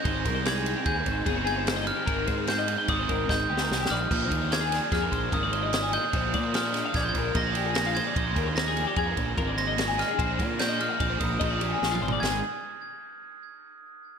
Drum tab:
CC |------------------------------|------------------------------|x-----------------------------|------------------------------|
RD |x--x--x--x--x--x--x--x--x--x--|x--x--x--x--x--x--------------|---x--x--x--x--x--x--x--x--x--|x--x--x--x--x--x--x--x--x--x--|
SD |------o-----------------o-----|------o-----------o---o-o-o---|------o--o--o-----------o-----|------o--o--o-----------o-----|
T2 |------------------------------|------------------------------|------------------------------|------------------------------|
FT |------------------------------|------------------------------|------------------------------|------------------------------|
BD |o--o--------o--o--o-----------|o--o--------o--o--o-----------|o--o--------o--o--o-----------|o--o--------o--o--o-----------|

CC |------------------------------|------------------------------|x-----------------------------|
RD |x--x--x--x--x--x--x--x--x--x--|x--x--x--x--x--x--x--x--------|------------------------------|
SD |------o-----------------o--o--|------o-----------------o-----|o-----------------------------|
T2 |------------------------------|--------------------------o---|------------------------------|
FT |------------------------------|----------------------------o-|------------------------------|
BD |o--o--------o--o--o-----------|o--o--------o--o--o-----------|------------------------------|